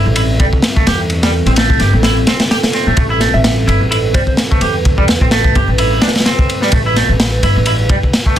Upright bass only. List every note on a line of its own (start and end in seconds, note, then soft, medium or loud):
0.06 0.35 A1 loud
0.40 0.49 G1 medium
0.86 1.40 E2 medium
1.46 1.75 A1 medium
1.80 1.89 G1 loud
1.93 2.22 A1 loud
2.87 2.94 A1 medium
2.97 3.28 A1 loud
3.34 3.63 A1 medium
3.67 3.77 G1 loud
3.81 4.10 A1 medium
4.14 4.24 G1 medium
4.61 5.15 E2 medium
5.21 5.50 A1 medium
5.55 5.65 G1 loud
5.68 5.97 A1 medium
6.72 7.03 A1 loud
7.09 7.38 A1 medium
7.43 7.52 G1 loud
7.56 7.85 A1 loud
7.89 7.99 G1 medium